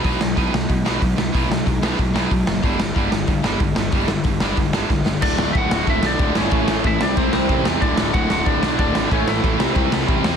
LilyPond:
<<
  \new Staff \with { instrumentName = "Lead electric guitar" } { \time 4/4 \key d \major \tempo 4 = 185 << { r1 | r1 | r1 | r1 |
d''8.~ d''32 e''32 fis''8 fis''8 e''8 d''4 cis''8~ | cis''4 e''8 d''8 c''8 c''4 r8 | d''4 fis''8 fis''8 d''4 d''4 | cis''8 e''2 r4. | } \\ { r1 | r1 | r1 | r1 |
d'4 fis'8 fis'8 e'8 d'4 cis'8~ | cis'4 e'8 d'8 c'8 c'4 r8 | d'4 fis'8 fis'8 d'4 d'4 | cis'8 e'2 r4. | } >> }
  \new Staff \with { instrumentName = "Distorted electric guitar" } { \clef bass \time 4/4 \key d \major <b, fis b>8 <b, fis>8 <b, fis b>8 <b, fis>8 <b, fis>8 <b, fis b>8 <b, fis>8 <b, fis>8 | <b, fis b>8 <b, fis>8 <b, fis>8 <b, fis b>8 <b, fis>8 <b, fis b>8 <b, fis>8 <b, fis>8 | <g, d g>8 <g, d>8 <g, d g>8 <g, d>8 <g, d>8 <g, d g>8 <g, d>8 <g, d>8 | <g, d g>8 <g, d>8 <g, d>8 <g, d g>8 <g, d>8 <g, d g>8 <g, d>8 <g, d>8 |
<d, a, d>4 <d, a, d>8 <d, a, d>8 <d, a, d>4 <d, a, d>8 <d, a, d>8 | <a, e a>4 <a, e a>8 <c g c'>8 <c g c'>4 <c g c'>8 <c g c'>8 | <d, a, d>4 <d, a, d>8 <d, a, d>8 <d, a, d>4 <d, a, d>8 <d, a, d>8 | <a, e a>4 <a, e a>8 <c g c'>8 <c g c'>4 <c g c'>8 <c g c'>8 | }
  \new Staff \with { instrumentName = "Distorted electric guitar" } { \clef bass \time 4/4 \key d \major <b, fis b>8 <b, fis>8 <b, fis b>8 <b, fis>8 <b, fis>8 <b, fis b>8 <b, fis>8 <b, fis>8 | <b, fis b>8 <b, fis>8 <b, fis>8 <b, fis b>8 <b, fis>8 <b, fis b>8 <b, fis>8 <b, fis>8 | <g, d g>8 <g, d>8 <g, d g>8 <g, d>8 <g, d>8 <g, d g>8 <g, d>8 <g, d>8 | <g, d g>8 <g, d>8 <g, d>8 <g, d g>8 <g, d>8 <g, d g>8 <g, d>8 <g, d>8 |
<d, a, d>4 <d, a, d>8 <d, a, d>8 <d, a, d>4 <d, a, d>8 <d, a, d>8 | <a, e a>4 <a, e a>8 <c g c'>8 <c g c'>4 <c g c'>8 <c g c'>8 | <d, a, d>4 <d, a, d>8 <d, a, d>8 <d, a, d>4 <d, a, d>8 <d, a, d>8 | <a, e a>4 <a, e a>8 <c g c'>8 <c g c'>4 <c g c'>8 <c g c'>8 | }
  \new Staff \with { instrumentName = "Overdriven electric guitar" } { \clef bass \time 4/4 \key d \major r1 | r1 | r1 | r1 |
<d, a, d>2~ <d, a, d>8 <d, a, d>8 <d, a, d>4 | <a, e a>4. <c g c'>2~ <c g c'>8 | <d, a, d>2~ <d, a, d>8 <d, a, d>8 <d, a, d>4 | <a, e a>4. <c g c'>2~ <c g c'>8 | }
  \new Staff \with { instrumentName = "Picked electric bass" } { \clef bass \time 4/4 \key d \major b,,8 b,,8 b,,8 b,,8 b,8 b,,8 b,,8 b,,8 | b,,8 b,,8 b,,8 b,,8 b,,8 b,,8 b,,8 fis,,8 | g,,8 g,,8 g,,8 g,,8 g,8 g,,8 g,,8 g,,8 | g,,8 g,,8 g,,8 g,,8 g,,8 g,,8 g,,8 g,,8 |
d,,8 d,,8 d,,8 d,,8 d,,8 b,,8 d,,8 g,,8 | a,,8 a,,8 a,,8 c,8 c,8 c,8 a,,8 e,8 | d,,8 d,,8 d,,8 d,,8 d,,8 b,,8 d,,8 gis,,8 | a,,8 a,,8 a,,8 c,8 c,8 c,8 a,,8 e,8 | }
  \new DrumStaff \with { instrumentName = "Drums" } \drummode { \time 4/4 <hho bd>8 sn8 <hho bd>8 sn8 <hho bd>8 sn8 <hho bd>8 sn8 | <hho bd>8 sn8 <hho bd>8 sn8 <hho bd>8 sn8 <hho bd>8 sn8 | <hho bd>8 sn8 <hho bd>8 sn8 <hho bd>8 sn8 <hho bd>8 sn8 | <hho bd>8 sn8 <hho bd>8 sn8 <hho bd>8 sn8 <bd sn>8 sn8 |
<cymc bd>8 sn8 <bd cymr>8 sn8 <bd cymr>8 sn8 <bd cymr>8 sn8 | <bd cymr>8 sn8 <bd cymr>8 sn8 <bd cymr>8 sn8 <bd cymr>8 sn8 | <bd cymr>8 sn8 <bd cymr>8 sn8 <bd cymr>8 sn8 <bd cymr>8 sn8 | <bd cymr>8 sn8 <bd cymr>8 sn8 <bd cymr>8 sn8 <bd cymr>8 sn8 | }
>>